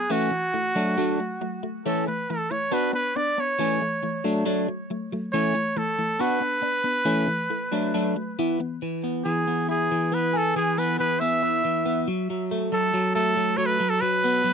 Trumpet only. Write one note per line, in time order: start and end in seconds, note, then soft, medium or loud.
0.00 0.13 G#4 medium
0.11 1.64 F#4 medium
1.85 2.05 A4 medium
2.07 2.32 B4 medium
2.31 2.52 A4 medium
2.51 2.75 C#5 medium
2.74 2.94 B4 medium
2.94 3.18 B4 medium
3.16 3.41 D5 medium
3.40 4.26 C#5 medium
5.33 5.79 C#5 loud
5.77 6.22 A4 medium
6.21 8.38 B4 medium
9.25 9.65 G#4 medium
9.70 10.16 G#4 medium
10.14 10.39 B4 medium
10.37 10.56 A4 medium
10.56 10.80 G#4 medium
10.78 10.99 B4 medium
10.99 11.21 B4 loud
11.20 12.07 E5 medium
12.73 13.13 A4 medium
13.15 13.59 A4 loud
13.57 13.67 C#5 medium
13.66 13.91 B4 medium
13.89 14.02 A4 loud
14.01 14.53 B4 loud